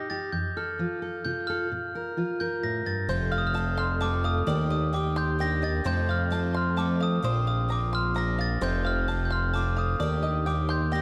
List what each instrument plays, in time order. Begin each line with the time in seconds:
Already playing: steel-string acoustic guitar A#2 D#4, glockenspiel A#6
0.10 steel-string acoustic guitar G4, glockenspiel A6
0.32 steel-string acoustic guitar F2, glockenspiel G6
0.57 steel-string acoustic guitar A4, glockenspiel F6
0.79 steel-string acoustic guitar F3 F4
1.02 steel-string acoustic guitar A4
1.25 steel-string acoustic guitar C3 F4, glockenspiel G6
1.47 steel-string acoustic guitar A4, glockenspiel F6
1.72 steel-string acoustic guitar A#2
1.95 steel-string acoustic guitar A#4
2.17 steel-string acoustic guitar F3 F4
2.40 steel-string acoustic guitar A#4, glockenspiel G6
2.63 steel-string acoustic guitar A2, glockenspiel A#6
2.86 steel-string acoustic guitar G2, glockenspiel A6
3.09 analog synth bass F1, twelve-string acoustic guitar F3 A3 C4 F4, five-string banjo C5, glockenspiel G6
3.32 five-string banjo F5, glockenspiel F6
3.38 glockenspiel D#6
3.47 glockenspiel F6
3.54 twelve-string acoustic guitar F3 A3 C4 F4, five-string banjo A5
3.78 five-string banjo C6, glockenspiel F6
4.00 twelve-string acoustic guitar F3 A3 C4 F4, five-string banjo A5, glockenspiel D6
4.24 five-string banjo F5, glockenspiel D#6
4.47 analog synth bass D#2, twelve-string acoustic guitar D#3 A#3 D4 G4, five-string banjo D5
4.70 five-string banjo D#5, glockenspiel D#6
4.93 twelve-string acoustic guitar D#3 A#3 G4, five-string banjo G5, glockenspiel D6
5.16 five-string banjo C6, glockenspiel G6
5.39 twelve-string acoustic guitar D#3 A#3 D4 G4, five-string banjo G5, glockenspiel A#6
5.62 twelve-string acoustic guitar A#3 D4 G4, five-string banjo D#5, glockenspiel A6
5.84 twelve-string acoustic guitar F2 C3 F3 A3 C4 F4, analog synth bass F2, five-string banjo C5, glockenspiel G6
6.09 five-string banjo F5, glockenspiel F6
6.30 twelve-string acoustic guitar F3 A3 C4 F4, five-string banjo A5
6.54 five-string banjo C6, glockenspiel F6
6.77 twelve-string acoustic guitar F3 A3 C4 F4, five-string banjo A5, glockenspiel D6
7.00 five-string banjo F5, glockenspiel D#6
7.22 analog synth bass A#1, twelve-string acoustic guitar A#2 F3 A#3 C4 F4, five-string banjo C5, glockenspiel D#6
7.47 five-string banjo F5, glockenspiel D#6
7.68 twelve-string acoustic guitar F3 A#3 C4 F4, five-string banjo A#5, glockenspiel D6
7.93 five-string banjo C6, glockenspiel F6
8.14 twelve-string acoustic guitar F3 A#3 C4 F4, five-string banjo A#5, glockenspiel A#6
8.39 five-string banjo F5, glockenspiel A6
8.61 analog synth bass F1, twelve-string acoustic guitar F2 C3 F3 A3 C4 F4, five-string banjo C5, glockenspiel G6
8.85 five-string banjo F5, glockenspiel F6
9.08 twelve-string acoustic guitar F3 A3 C4 F4, five-string banjo A5
9.25 glockenspiel G6
9.30 five-string banjo C6, glockenspiel F6
9.53 twelve-string acoustic guitar F3 A3 C4 F4, five-string banjo A5, glockenspiel D6
9.77 five-string banjo F5, glockenspiel D#6
10.00 analog synth bass D#2, twelve-string acoustic guitar D#3 A#3 D4 G4, five-string banjo D5
10.23 five-string banjo D#5, glockenspiel D#6
10.46 twelve-string acoustic guitar D#3 A#3 G4, five-string banjo G5, glockenspiel D6
10.69 five-string banjo C6, glockenspiel G6
10.91 twelve-string acoustic guitar D#3 A#3 D4 G4, five-string banjo G5, glockenspiel A#6